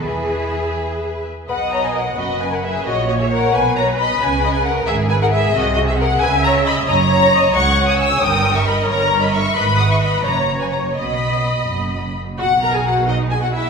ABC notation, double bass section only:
X:1
M:6/8
L:1/8
Q:3/8=88
K:E
V:1 name="Double bass section" clef=bass
E,,4- E,, z | [K:B] B,,,3 F,,,3 | A,,,3 B,,,3 | C,,3 G,,,3 |
^B,,,3 C,,3 | F,,,3 C,,3 | =G,,,3 G,,,3 | G,,,3 F,,,3 |
B,,,3 F,,,3 | B,,,6 |]